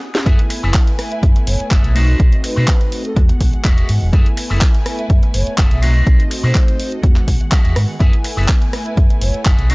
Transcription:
Already playing: G#4 F#5 D#6
0.15 snare
0.25 F#2 A3 B3 E4 G#4 A4 B4 E5 G#5, kick, closed hi-hat
0.39 closed hi-hat
0.50 muted clean electric guitar stroke, open hi-hat
0.63 F#1 G#4 A4 B4 E5
0.74 kick, clap, closed hi-hat
0.87 muted clean electric guitar stroke, closed hi-hat
0.99 cross-stick, open hi-hat
1.12 E5, closed hi-hat
1.23 F#2 E5, kick, closed hi-hat
1.36 muted clean electric guitar stroke, closed hi-hat
1.47 F#1 C#5, muted clean electric guitar stroke, open hi-hat
1.60 muted fingered electric bass stroke, muted clean electric guitar stroke, closed hi-hat
1.71 F#1 G#4 A4 B4 E5, kick, clap, closed hi-hat
1.84 B1, closed hi-hat
1.95 A3 C4 D#4 F#4 A4 B4 C5 D#5, open hi-hat
2.20 B1, kick, closed hi-hat
2.32 closed hi-hat
2.44 B4, muted clean electric guitar stroke, open hi-hat
2.56 B2 A4 B4 C5 D#5
2.68 kick, clap, closed hi-hat
2.81 muted clean electric guitar stroke, closed hi-hat
2.92 open hi-hat
3.05 A4, closed hi-hat
3.16 E2 D#3 G#3 B3 F#4 G#4 F#5, kick, closed hi-hat
3.29 muted clean electric guitar stroke, muted fingered electric bass stroke, closed hi-hat
3.40 B1, muted clean electric guitar stroke, kick, open hi-hat
3.53 muted clean electric guitar stroke, muted fingered electric bass stroke, closed hi-hat
3.64 E1 F#4 G#4 D#5 E5, kick, clap, closed hi-hat
3.78 closed hi-hat
3.89 G#2, open hi-hat
4.02 E1
4.13 F#2 A3 B3 E4 G#4 A4 B4 E5 G#5, kick, closed hi-hat
4.26 closed hi-hat
4.37 muted clean electric guitar stroke, open hi-hat
4.50 F#1 G#4 A4 B4 E5
4.61 kick, clap, closed hi-hat
4.74 muted clean electric guitar stroke, closed hi-hat
4.86 cross-stick, open hi-hat
4.99 E5, closed hi-hat
5.10 F#2 E5, kick, closed hi-hat
5.23 muted clean electric guitar stroke, closed hi-hat
5.34 F#1 C#5, muted clean electric guitar stroke, open hi-hat
5.47 muted clean electric guitar stroke, muted fingered electric bass stroke, closed hi-hat
5.58 F#1 G#4 A4 B4 E5, kick, clap, closed hi-hat
5.71 B1 E5, closed hi-hat
5.82 A3 C4 D#4 F#4 A4 B4 C5 D#5, open hi-hat
6.07 B1, kick, closed hi-hat
6.20 closed hi-hat
6.31 muted clean electric guitar stroke, open hi-hat
6.43 B2 A4 B4 C5 D#5
6.55 kick, clap, closed hi-hat
6.67 muted clean electric guitar stroke, closed hi-hat
6.80 open hi-hat
6.92 closed hi-hat
7.02 E2 D#3 G#3 B3 F#4 G#4 F#5, muted clean electric guitar stroke, kick, closed hi-hat
7.16 muted clean electric guitar stroke, muted fingered electric bass stroke, clap, closed hi-hat
7.27 B1, muted clean electric guitar stroke, kick, open hi-hat
7.41 muted clean electric guitar stroke, closed hi-hat
7.51 F#4 G#4 D#5 E5, kick, clap, closed hi-hat
7.65 E2, closed hi-hat
7.76 G#2, cross-stick, open hi-hat
7.99 F#2 A3 B3 E4 G#4 A4 B4 E5 G#5, kick, closed hi-hat
8.13 closed hi-hat
8.24 muted clean electric guitar stroke, open hi-hat
8.37 F#1 G#4 A4 B4 E5
8.48 kick, clap, closed hi-hat
8.62 muted clean electric guitar stroke, closed hi-hat
8.73 cross-stick, open hi-hat
8.86 E5, closed hi-hat
8.97 F#2 E5, kick, closed hi-hat
9.10 muted clean electric guitar stroke, closed hi-hat
9.21 F#1 C#5, muted clean electric guitar stroke, open hi-hat
9.34 muted fingered electric bass stroke, muted clean electric guitar stroke, closed hi-hat
9.45 F#1 G#4 A4 B4 E5, kick, clap, closed hi-hat
9.58 B1, closed hi-hat
9.70 A3 C4 D#4 F#4 A4 B4 C5 D#5, open hi-hat

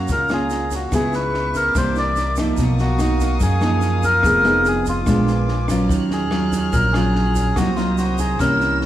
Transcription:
Already playing: F#3 F#4 F5 A#5
0.08 C#2 C#3 A#4, kick, snare, shaker
0.28 A#3 C#4 F4, cross-stick, snare, shaker
0.33 G#4
0.50 snare, shaker
0.71 F#4, kick, snare, shaker
0.91 C#2 C#3 B3 E4 G#4 B4 E5 C#6, kick, cross-stick, snare, shaker
1.13 B4, snare, shaker
1.34 snare
1.54 A#4, kick, snare, shaker
1.73 C2 C3 E3 A#3 D4 A#4 D6, kick, cross-stick, snare, shaker
1.77 C5
1.96 D5, snare, shaker
2.16 snare, shaker
2.36 F3 A#3 D#4, kick, cross-stick, snare, shaker
2.57 B1 B2 F5 C#6 D#6, kick, snare, shaker
2.79 F#4, snare, shaker
2.99 A#3 D#4, cross-stick, snare, shaker
3.20 kick, snare, shaker
3.39 F#2 G#4, kick, snare, shaker
3.61 F3 A#3 D#4, cross-stick, snare, shaker
3.81 snare, shaker
4.03 A#4, kick, snare, shaker
4.23 F1 F3 B3 D#4 G#4, kick, cross-stick, snare, shaker
4.44 B3 D#4 G#4, snare, shaker
4.65 G#4, snare, shaker
4.86 F4, kick, snare, shaker
5.06 A#1 A#2 G#3 B3 D4 B4 G#5 D6, kick, cross-stick, snare, shaker
5.27 snare, shaker
5.48 snare
5.68 F#3 C#4 F4, kick, cross-stick, snare, shaker
5.88 D#2 D#3 C#5 F6 F#6, kick, snare, shaker
6.11 G#4, snare, shaker
6.30 F#3 C#4 F4, cross-stick, snare
6.52 kick, snare, shaker
6.72 A#1 A#2 A#4, kick, snare, shaker
6.92 F#3 C#4 F4 G#4, cross-stick, snare, shaker
7.15 snare
7.35 kick, snare, shaker
7.55 C2 C3 F#3 A#3 D#4 F#4 C5 A#5 D#6, kick, cross-stick, snare, shaker
7.76 F#3 A#3 D#4 F4, snare, shaker
7.98 F#4, snare, shaker
8.18 G#4, kick, snare, shaker
8.39 C2 C3 E3 A#3 C#4 A#4 C#5 E6, kick, cross-stick, snare, shaker
8.60 snare, shaker
8.81 snare

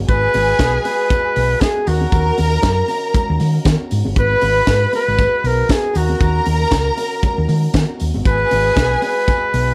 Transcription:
Already playing: F#4
0.08 G#1 G#3 G#4 B4 G#5, kick, closed hi-hat, tambourine
0.34 G#1, open hi-hat, tambourine, muted conga
0.59 B1, kick, snare, closed hi-hat, tambourine, high conga
0.84 B4, open hi-hat, tambourine, muted conga
1.10 kick, closed hi-hat, tambourine, muted conga
1.36 B1, open hi-hat, tambourine, muted conga
1.61 G#4, kick, snare, closed hi-hat, tambourine, high conga
1.87 D#2 D#3 C#4 F#4 A#4 A#5, open hi-hat, tambourine
2.01 high conga
2.12 D#2, kick, closed hi-hat, tambourine
2.37 D#2, open hi-hat, tambourine, muted conga
2.63 F#2, kick, snare, closed hi-hat, tambourine, high conga
2.88 open hi-hat, tambourine, muted conga
3.14 kick, closed hi-hat, tambourine, muted conga, low conga
3.30 D#2
3.40 D#3, open hi-hat, tambourine, muted conga, low conga
3.65 D#3, kick, snare, closed hi-hat, tambourine, high conga
3.91 G#2, open hi-hat, tambourine
4.05 G1, high conga
4.15 G#1 G#3 F#4 B4 B5, kick, closed hi-hat
4.20 B4
4.41 G#1, open hi-hat, muted conga
4.67 G#2, kick, snare, closed hi-hat, tambourine, high conga
4.93 B4, open hi-hat, tambourine, muted conga
5.08 G#1
5.18 kick, closed hi-hat, tambourine, muted conga
5.44 B1 A#4, open hi-hat, tambourine, muted conga
5.69 G#4, kick, snare, closed hi-hat, tambourine, high conga
5.93 D#2 D#3 C#4 F#4 A#4 A#5, open hi-hat, tambourine
6.09 high conga
6.20 D#2, kick, closed hi-hat, tambourine
6.45 D#2, open hi-hat, muted conga
6.71 C#2, kick, snare, closed hi-hat, tambourine, high conga
6.97 open hi-hat, tambourine, muted conga
7.23 kick, closed hi-hat, tambourine, muted conga, low conga
7.38 D#2
7.48 D#3, open hi-hat, tambourine, low conga
7.74 D#3, kick, snare, closed hi-hat, tambourine, high conga
8.00 D#2, open hi-hat, tambourine
8.14 G1, high conga
8.24 G#1 G#3 G#4 B4 G#5, kick, closed hi-hat, tambourine
8.51 G#1, open hi-hat, muted conga
8.76 B1, kick, snare, closed hi-hat, tambourine, high conga
9.02 B4, open hi-hat, tambourine, muted conga
9.28 kick, closed hi-hat, tambourine, muted conga
9.54 B1, open hi-hat, tambourine

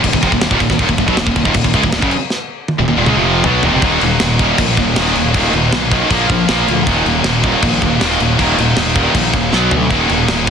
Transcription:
0.03 D#1 D#2 A#2, kick, crash
0.13 D#1 D#2 A#2, kick
0.23 F1 F2 C3, kick, crash
0.32 D#1 D#2 A#2, kick
0.41 D#1 D#2 A#2, snare, crash
0.51 D#1 D#2 A#2, kick
0.60 D#1 D#2 A#2, kick, crash
0.70 D#1 D#2 A#2, kick, snare
0.79 D#1 D#2 A#2, kick, crash
0.89 D#1 D#2 A#2, kick
0.98 D#1 D#2 A#2, kick, crash
1.08 B1 B2 F#3, kick
1.17 D#1 D#2 A#2, snare, crash
1.26 D#1 D#2 A#2, kick
1.36 D#1 D#2 A#2, kick, crash
1.45 D#1 D#2 A#2, kick
1.54 D#1 D#2 A#2, kick, crash
1.63 D#1 D#2 A#2, kick
1.74 C#2 C#3 G#3, kick, crash
1.83 D#1 D#2 A#2, kick
1.92 D#1 D#2 A#2, snare, crash
2.02 F#1 F#2 C#3, kick
2.11 crash
2.30 snare
2.68 high tom
2.78 D#1 D#2 A#2
2.88 D#1 D#2 A#2, high tom
2.97 D#1 D#2 A#2
3.06 C#2 C#3 G#3, mid tom
3.17 F1 F2 C3 F3
3.44 B1 B2 F#3 B3, floor tom
3.63 D#1 D#2 A#2, floor tom
3.74 F1 F2 C3
3.82 D#1 D#2 A#2 D#3 F#3 A#3 D#4, kick, crash
4.01 D#1 D#2 A#2, crash
4.20 D#1 D#2 A#2, snare, crash
4.39 D#2 A#2 D#3, kick, crash
4.58 A#1 D#2 A#2, kick, crash
4.77 D#1 D#2 A#2, kick, crash
4.96 D#1 D#2 A#2 D#3, snare, crash
5.06 snare
5.15 D#1 D#2 A#2, crash
5.34 D#1 D#2 A#2 D#3 F#3 A#3 D#4, kick, crash
5.53 D#1 D#2 A#2, crash
5.72 B1 D#2 A#2, snare, crash
5.91 D#2 A#2 D#3, kick, crash
6.10 A#1 A#2 F3 A#3, kick, crash
6.29 A#1 A#2 F3, kick, crash
6.48 A#1 A#2 F3 A#3, snare, crash
6.67 D2 A#2 F3, crash
6.87 D#1 D#2 A#2 D#3 F#3 A#3 D#4, kick, crash
7.06 D#1 D#2 A#2, crash
7.24 D#1 D#2 A#2, snare, crash
7.43 D#2 A#2 D#3, kick, crash
7.62 A#1 D#2 A#2, kick, crash
7.82 D#1 D#2 A#2, kick, crash
8.01 D#1 D#2 A#2 D#3, snare, crash
8.11 snare
8.20 D#1 D#2 A#2, crash
8.39 D#1 D#2 A#2 D#3 F#3 A#3 D#4, kick, crash
8.58 D#1 D#2 A#2, crash
8.77 D#1 D#2 A#2, snare, crash
8.96 D#2 A#2 D#3, kick, crash
9.14 A#1 D#2 A#2, kick, crash
9.33 D#1 D#2 A#2, kick, crash
9.52 B1 B2 F#3 B3, snare
9.71 D2 B2 F#3, floor tom
9.90 D#1 D#2 A#2 D#3 F#3 A#3 D#4, kick, crash
10.09 D#1 D#2 A#2, crash
10.28 D#1 D#2 A#2, snare, crash

